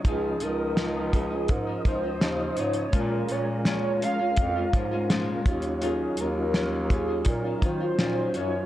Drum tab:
HH |x-x-x-x-x-x-x-xx|x-x-x-x-x-x-x-xx|x-x-x-x-x-x-x-x-|
SD |----o-------o---|----o-------o---|----o-------o---|
BD |o-----o-o-o-----|o-------o-o---o-|------o-o-o-----|